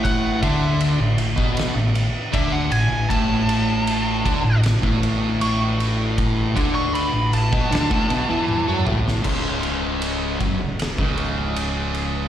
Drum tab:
CC |----------------|----------------|----------------|x---------------|
RD |x-x-x-x-x-x-x-x-|x-x-x-x-x-x-x-x-|x-x-x-x-x-x-----|--x-x-x-x-x-x-x-|
SD |--------o-------|--------o-------|--------o------o|--------o-------|
T1 |----------------|----------------|------------o---|----------------|
T2 |----------------|----------------|--------------o-|----------------|
BD |o-o----o----o---|o-----o--o------|o-o----o-o------|o-----o--o------|